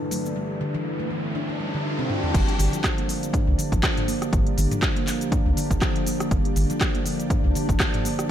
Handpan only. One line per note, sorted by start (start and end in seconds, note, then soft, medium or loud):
0.11 0.19 A3 medium
0.36 0.48 G3 medium
0.61 0.73 D3 medium
0.74 0.84 E3 loud
0.99 1.09 A3 medium
1.11 1.23 E3 medium
1.35 1.43 D4 medium
1.49 1.59 D4 medium
1.60 1.68 G3 medium
1.74 1.84 D3 medium
1.99 2.09 C4 loud
2.09 2.22 D4 medium
2.34 2.47 G3 medium
2.59 2.72 D3 loud
2.73 2.83 F3 loud
2.97 3.08 A#3 medium
3.09 3.21 F3 medium
3.33 3.41 D4 medium
3.47 3.57 D4 medium
3.58 3.71 D3 medium
3.72 3.82 F3 loud
4.08 4.16 A#3 medium
4.33 4.45 G3 medium
4.57 4.70 D3 loud
4.71 4.81 F3 loud
4.96 5.06 A#3 medium
5.08 5.20 F3 medium
5.32 5.39 D4 medium
5.46 5.56 D4 medium
5.57 5.69 D3 loud
5.71 5.81 F3 loud
6.07 6.14 A#3 medium
6.32 6.44 G3 medium
6.56 6.69 D3 loud
6.70 6.80 F3 loud
6.95 7.05 A#3 medium
7.06 7.18 F3 medium
7.31 7.38 D4 medium
7.44 7.54 D4 medium
7.55 7.68 D3 loud
7.70 7.79 F3 loud
8.05 8.12 A#3 medium